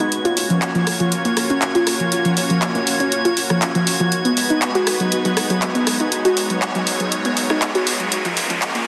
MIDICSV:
0, 0, Header, 1, 7, 480
1, 0, Start_track
1, 0, Tempo, 500000
1, 114, Time_signature, 4, 2, 24, 8
1, 8515, End_track
2, 0, Start_track
2, 0, Title_t, "Synth texture"
2, 0, Program_c, 0, 99
2, 0, Note_on_c, 0, 92, 80
2, 8515, Note_off_c, 0, 92, 0
2, 8515, End_track
3, 0, Start_track
3, 0, Title_t, "Supersaw synth"
3, 0, Program_c, 1, 81
3, 0, Note_on_c, 1, 66, 66
3, 113, Note_on_c, 1, 65, 67
3, 114, Note_on_c, 1, 58, 76
3, 114, Note_on_c, 1, 61, 67
3, 114, Note_on_c, 1, 73, 82
3, 3915, Note_off_c, 1, 65, 0
3, 3915, Note_off_c, 1, 73, 0
3, 3916, Note_off_c, 1, 58, 0
3, 3916, Note_off_c, 1, 61, 0
3, 3953, Note_on_c, 1, 56, 74
3, 3953, Note_on_c, 1, 59, 66
3, 3953, Note_on_c, 1, 63, 67
3, 3953, Note_on_c, 1, 71, 82
3, 5854, Note_off_c, 1, 71, 0
3, 5873, Note_on_c, 1, 73, 83
3, 7755, Note_off_c, 1, 59, 0
3, 7755, Note_off_c, 1, 63, 0
3, 7756, Note_off_c, 1, 66, 0
3, 7775, Note_off_c, 1, 73, 0
3, 7793, Note_on_c, 1, 61, 73
3, 7793, Note_on_c, 1, 65, 67
3, 7794, Note_on_c, 1, 58, 72
3, 7794, Note_on_c, 1, 70, 84
3, 8515, Note_off_c, 1, 56, 0
3, 8515, Note_off_c, 1, 58, 0
3, 8515, Note_off_c, 1, 61, 0
3, 8515, Note_off_c, 1, 65, 0
3, 8515, Note_off_c, 1, 70, 0
3, 8515, End_track
4, 0, Start_track
4, 0, Title_t, "Synth pluck"
4, 0, Program_c, 2, 84
4, 1, Note_on_c, 2, 63, 74
4, 76, Note_off_c, 2, 63, 0
4, 241, Note_on_c, 2, 65, 104
4, 316, Note_off_c, 2, 65, 0
4, 480, Note_on_c, 2, 53, 76
4, 556, Note_off_c, 2, 53, 0
4, 720, Note_on_c, 2, 53, 75
4, 796, Note_off_c, 2, 53, 0
4, 961, Note_on_c, 2, 53, 76
4, 1068, Note_off_c, 2, 53, 0
4, 1201, Note_on_c, 2, 58, 73
4, 1246, Note_off_c, 2, 58, 0
4, 1441, Note_on_c, 2, 61, 79
4, 1516, Note_off_c, 2, 61, 0
4, 1680, Note_on_c, 2, 65, 106
4, 1756, Note_off_c, 2, 65, 0
4, 1920, Note_on_c, 2, 53, 72
4, 1996, Note_off_c, 2, 53, 0
4, 2161, Note_on_c, 2, 53, 77
4, 2236, Note_off_c, 2, 53, 0
4, 2400, Note_on_c, 2, 53, 75
4, 2508, Note_off_c, 2, 53, 0
4, 2641, Note_on_c, 2, 58, 78
4, 2686, Note_off_c, 2, 58, 0
4, 2881, Note_on_c, 2, 61, 75
4, 2956, Note_off_c, 2, 61, 0
4, 3120, Note_on_c, 2, 65, 97
4, 3196, Note_off_c, 2, 65, 0
4, 3360, Note_on_c, 2, 53, 77
4, 3436, Note_off_c, 2, 53, 0
4, 3600, Note_on_c, 2, 53, 76
4, 3676, Note_off_c, 2, 53, 0
4, 3841, Note_on_c, 2, 53, 72
4, 3948, Note_off_c, 2, 53, 0
4, 4081, Note_on_c, 2, 59, 76
4, 4126, Note_off_c, 2, 59, 0
4, 4321, Note_on_c, 2, 63, 75
4, 4396, Note_off_c, 2, 63, 0
4, 4561, Note_on_c, 2, 66, 104
4, 4636, Note_off_c, 2, 66, 0
4, 4801, Note_on_c, 2, 54, 78
4, 4876, Note_off_c, 2, 54, 0
4, 5040, Note_on_c, 2, 54, 77
4, 5116, Note_off_c, 2, 54, 0
4, 5280, Note_on_c, 2, 54, 73
4, 5388, Note_off_c, 2, 54, 0
4, 5521, Note_on_c, 2, 59, 78
4, 5566, Note_off_c, 2, 59, 0
4, 5760, Note_on_c, 2, 63, 74
4, 5836, Note_off_c, 2, 63, 0
4, 6000, Note_on_c, 2, 66, 104
4, 6076, Note_off_c, 2, 66, 0
4, 6240, Note_on_c, 2, 54, 77
4, 6316, Note_off_c, 2, 54, 0
4, 6480, Note_on_c, 2, 54, 74
4, 6556, Note_off_c, 2, 54, 0
4, 6721, Note_on_c, 2, 54, 75
4, 6829, Note_off_c, 2, 54, 0
4, 6961, Note_on_c, 2, 59, 75
4, 7006, Note_off_c, 2, 59, 0
4, 7201, Note_on_c, 2, 63, 79
4, 7276, Note_off_c, 2, 63, 0
4, 7441, Note_on_c, 2, 66, 103
4, 7516, Note_off_c, 2, 66, 0
4, 7681, Note_on_c, 2, 54, 72
4, 7756, Note_off_c, 2, 54, 0
4, 7921, Note_on_c, 2, 53, 78
4, 7996, Note_off_c, 2, 53, 0
4, 8161, Note_on_c, 2, 53, 77
4, 8269, Note_off_c, 2, 53, 0
4, 8401, Note_on_c, 2, 58, 77
4, 8446, Note_off_c, 2, 58, 0
4, 8515, End_track
5, 0, Start_track
5, 0, Title_t, "Analog synth bass"
5, 0, Program_c, 3, 38
5, 0, Note_on_c, 3, 32, 82
5, 70, Note_off_c, 3, 32, 0
5, 353, Note_on_c, 3, 30, 93
5, 432, Note_off_c, 3, 30, 0
5, 720, Note_on_c, 3, 30, 85
5, 1004, Note_off_c, 3, 30, 0
5, 1200, Note_on_c, 3, 30, 88
5, 1484, Note_off_c, 3, 30, 0
5, 1554, Note_on_c, 3, 37, 90
5, 1935, Note_off_c, 3, 37, 0
5, 2274, Note_on_c, 3, 30, 97
5, 2352, Note_off_c, 3, 30, 0
5, 2641, Note_on_c, 3, 30, 87
5, 2924, Note_off_c, 3, 30, 0
5, 3121, Note_on_c, 3, 30, 98
5, 3404, Note_off_c, 3, 30, 0
5, 3475, Note_on_c, 3, 42, 83
5, 3763, Note_off_c, 3, 42, 0
5, 3841, Note_on_c, 3, 32, 90
5, 4124, Note_off_c, 3, 32, 0
5, 4194, Note_on_c, 3, 32, 95
5, 4272, Note_off_c, 3, 32, 0
5, 4561, Note_on_c, 3, 32, 89
5, 4844, Note_off_c, 3, 32, 0
5, 5041, Note_on_c, 3, 32, 96
5, 5324, Note_off_c, 3, 32, 0
5, 5394, Note_on_c, 3, 39, 96
5, 5775, Note_off_c, 3, 39, 0
5, 6114, Note_on_c, 3, 32, 100
5, 6192, Note_off_c, 3, 32, 0
5, 6961, Note_on_c, 3, 32, 93
5, 7244, Note_off_c, 3, 32, 0
5, 7314, Note_on_c, 3, 39, 92
5, 7695, Note_off_c, 3, 39, 0
5, 8034, Note_on_c, 3, 34, 103
5, 8112, Note_off_c, 3, 34, 0
5, 8515, End_track
6, 0, Start_track
6, 0, Title_t, "Riser"
6, 0, Program_c, 4, 103
6, 3954, Note_on_c, 4, 60, 78
6, 8515, Note_off_c, 4, 60, 0
6, 8515, End_track
7, 0, Start_track
7, 0, Title_t, "Drums"
7, 0, Note_on_c, 9, 42, 36
7, 96, Note_off_c, 9, 42, 0
7, 114, Note_on_c, 9, 42, 84
7, 210, Note_off_c, 9, 42, 0
7, 241, Note_on_c, 9, 42, 38
7, 337, Note_off_c, 9, 42, 0
7, 354, Note_on_c, 9, 46, 110
7, 450, Note_off_c, 9, 46, 0
7, 481, Note_on_c, 9, 42, 38
7, 577, Note_off_c, 9, 42, 0
7, 593, Note_on_c, 9, 39, 117
7, 594, Note_on_c, 9, 42, 80
7, 689, Note_off_c, 9, 39, 0
7, 690, Note_off_c, 9, 42, 0
7, 721, Note_on_c, 9, 42, 38
7, 817, Note_off_c, 9, 42, 0
7, 834, Note_on_c, 9, 37, 76
7, 834, Note_on_c, 9, 46, 106
7, 930, Note_off_c, 9, 37, 0
7, 930, Note_off_c, 9, 46, 0
7, 961, Note_on_c, 9, 42, 37
7, 1057, Note_off_c, 9, 42, 0
7, 1074, Note_on_c, 9, 42, 92
7, 1170, Note_off_c, 9, 42, 0
7, 1201, Note_on_c, 9, 42, 37
7, 1297, Note_off_c, 9, 42, 0
7, 1313, Note_on_c, 9, 37, 72
7, 1313, Note_on_c, 9, 46, 108
7, 1409, Note_off_c, 9, 37, 0
7, 1409, Note_off_c, 9, 46, 0
7, 1440, Note_on_c, 9, 42, 35
7, 1536, Note_off_c, 9, 42, 0
7, 1552, Note_on_c, 9, 39, 110
7, 1553, Note_on_c, 9, 42, 82
7, 1648, Note_off_c, 9, 39, 0
7, 1649, Note_off_c, 9, 42, 0
7, 1680, Note_on_c, 9, 42, 38
7, 1776, Note_off_c, 9, 42, 0
7, 1793, Note_on_c, 9, 37, 60
7, 1793, Note_on_c, 9, 46, 96
7, 1889, Note_off_c, 9, 37, 0
7, 1889, Note_off_c, 9, 46, 0
7, 1920, Note_on_c, 9, 42, 35
7, 2016, Note_off_c, 9, 42, 0
7, 2034, Note_on_c, 9, 42, 83
7, 2130, Note_off_c, 9, 42, 0
7, 2160, Note_on_c, 9, 42, 38
7, 2256, Note_off_c, 9, 42, 0
7, 2274, Note_on_c, 9, 46, 107
7, 2370, Note_off_c, 9, 46, 0
7, 2400, Note_on_c, 9, 42, 36
7, 2496, Note_off_c, 9, 42, 0
7, 2513, Note_on_c, 9, 39, 113
7, 2514, Note_on_c, 9, 42, 81
7, 2609, Note_off_c, 9, 39, 0
7, 2610, Note_off_c, 9, 42, 0
7, 2641, Note_on_c, 9, 42, 35
7, 2737, Note_off_c, 9, 42, 0
7, 2754, Note_on_c, 9, 46, 108
7, 2850, Note_off_c, 9, 46, 0
7, 2881, Note_on_c, 9, 42, 37
7, 2977, Note_off_c, 9, 42, 0
7, 2994, Note_on_c, 9, 42, 86
7, 3090, Note_off_c, 9, 42, 0
7, 3121, Note_on_c, 9, 42, 37
7, 3217, Note_off_c, 9, 42, 0
7, 3234, Note_on_c, 9, 46, 102
7, 3330, Note_off_c, 9, 46, 0
7, 3361, Note_on_c, 9, 37, 60
7, 3361, Note_on_c, 9, 42, 34
7, 3457, Note_off_c, 9, 37, 0
7, 3457, Note_off_c, 9, 42, 0
7, 3474, Note_on_c, 9, 39, 100
7, 3474, Note_on_c, 9, 42, 79
7, 3570, Note_off_c, 9, 39, 0
7, 3570, Note_off_c, 9, 42, 0
7, 3601, Note_on_c, 9, 42, 37
7, 3697, Note_off_c, 9, 42, 0
7, 3715, Note_on_c, 9, 46, 100
7, 3811, Note_off_c, 9, 46, 0
7, 3841, Note_on_c, 9, 42, 35
7, 3937, Note_off_c, 9, 42, 0
7, 3954, Note_on_c, 9, 42, 83
7, 4050, Note_off_c, 9, 42, 0
7, 4081, Note_on_c, 9, 42, 39
7, 4177, Note_off_c, 9, 42, 0
7, 4194, Note_on_c, 9, 46, 107
7, 4290, Note_off_c, 9, 46, 0
7, 4320, Note_on_c, 9, 42, 35
7, 4416, Note_off_c, 9, 42, 0
7, 4433, Note_on_c, 9, 39, 101
7, 4434, Note_on_c, 9, 42, 81
7, 4529, Note_off_c, 9, 39, 0
7, 4530, Note_off_c, 9, 42, 0
7, 4561, Note_on_c, 9, 42, 37
7, 4657, Note_off_c, 9, 42, 0
7, 4674, Note_on_c, 9, 37, 85
7, 4674, Note_on_c, 9, 46, 108
7, 4770, Note_off_c, 9, 37, 0
7, 4770, Note_off_c, 9, 46, 0
7, 4801, Note_on_c, 9, 42, 38
7, 4897, Note_off_c, 9, 42, 0
7, 4914, Note_on_c, 9, 42, 87
7, 5010, Note_off_c, 9, 42, 0
7, 5041, Note_on_c, 9, 42, 37
7, 5137, Note_off_c, 9, 42, 0
7, 5154, Note_on_c, 9, 37, 82
7, 5154, Note_on_c, 9, 46, 97
7, 5250, Note_off_c, 9, 37, 0
7, 5250, Note_off_c, 9, 46, 0
7, 5281, Note_on_c, 9, 42, 37
7, 5377, Note_off_c, 9, 42, 0
7, 5393, Note_on_c, 9, 39, 103
7, 5394, Note_on_c, 9, 42, 86
7, 5489, Note_off_c, 9, 39, 0
7, 5490, Note_off_c, 9, 42, 0
7, 5521, Note_on_c, 9, 42, 39
7, 5617, Note_off_c, 9, 42, 0
7, 5634, Note_on_c, 9, 37, 66
7, 5634, Note_on_c, 9, 46, 102
7, 5730, Note_off_c, 9, 37, 0
7, 5730, Note_off_c, 9, 46, 0
7, 5761, Note_on_c, 9, 42, 36
7, 5857, Note_off_c, 9, 42, 0
7, 5874, Note_on_c, 9, 42, 88
7, 5970, Note_off_c, 9, 42, 0
7, 6000, Note_on_c, 9, 42, 39
7, 6096, Note_off_c, 9, 42, 0
7, 6114, Note_on_c, 9, 46, 102
7, 6210, Note_off_c, 9, 46, 0
7, 6240, Note_on_c, 9, 42, 40
7, 6336, Note_off_c, 9, 42, 0
7, 6353, Note_on_c, 9, 39, 106
7, 6354, Note_on_c, 9, 42, 84
7, 6449, Note_off_c, 9, 39, 0
7, 6450, Note_off_c, 9, 42, 0
7, 6481, Note_on_c, 9, 42, 38
7, 6577, Note_off_c, 9, 42, 0
7, 6594, Note_on_c, 9, 46, 98
7, 6690, Note_off_c, 9, 46, 0
7, 6720, Note_on_c, 9, 42, 38
7, 6816, Note_off_c, 9, 42, 0
7, 6834, Note_on_c, 9, 42, 89
7, 6930, Note_off_c, 9, 42, 0
7, 6960, Note_on_c, 9, 42, 39
7, 7056, Note_off_c, 9, 42, 0
7, 7073, Note_on_c, 9, 46, 100
7, 7169, Note_off_c, 9, 46, 0
7, 7200, Note_on_c, 9, 37, 64
7, 7296, Note_off_c, 9, 37, 0
7, 7313, Note_on_c, 9, 39, 107
7, 7313, Note_on_c, 9, 42, 86
7, 7409, Note_off_c, 9, 39, 0
7, 7409, Note_off_c, 9, 42, 0
7, 7440, Note_on_c, 9, 42, 39
7, 7536, Note_off_c, 9, 42, 0
7, 7553, Note_on_c, 9, 46, 100
7, 7649, Note_off_c, 9, 46, 0
7, 7680, Note_on_c, 9, 42, 38
7, 7776, Note_off_c, 9, 42, 0
7, 7794, Note_on_c, 9, 42, 92
7, 7890, Note_off_c, 9, 42, 0
7, 7921, Note_on_c, 9, 42, 38
7, 8017, Note_off_c, 9, 42, 0
7, 8034, Note_on_c, 9, 46, 101
7, 8130, Note_off_c, 9, 46, 0
7, 8161, Note_on_c, 9, 42, 40
7, 8257, Note_off_c, 9, 42, 0
7, 8273, Note_on_c, 9, 39, 116
7, 8274, Note_on_c, 9, 42, 94
7, 8369, Note_off_c, 9, 39, 0
7, 8370, Note_off_c, 9, 42, 0
7, 8401, Note_on_c, 9, 42, 39
7, 8497, Note_off_c, 9, 42, 0
7, 8515, End_track
0, 0, End_of_file